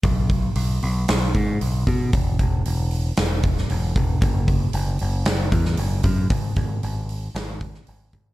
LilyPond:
<<
  \new Staff \with { instrumentName = "Picked electric bass" } { \clef bass \time 4/4 \key e \lydian \tempo 4 = 115 b,,4 b,,8 b,,8 b,,8 gis,8 b,,8 b,8 | e,,8 e,,8 e,,4 e,,4 e,,8 e,,8 | fis,,4 fis,,8 fis,,8 fis,,8 e,8 fis,,8 fis,8 | gis,,8 gis,,8 gis,,4 gis,,4 gis,,8 gis,,8 | }
  \new DrumStaff \with { instrumentName = "Drums" } \drummode { \time 4/4 <hho bd>8 <hho bd>8 hho8 hho8 <hho sn>8 <hho bd>8 hho8 <hho bd>8 | <hho bd>8 <hho bd>8 hho8 hho8 <hho sn>8 <hho bd>16 sn16 hho8 <hho bd>8 | <hho bd>8 <hho bd>8 hho8 hho8 <hho sn>8 <hho bd>16 sn16 hho8 <hho bd>8 | <hho bd>8 <hho bd>8 hho8 hho8 <hho sn>8 <hho bd>16 sn16 hho8 <hho bd>8 | }
>>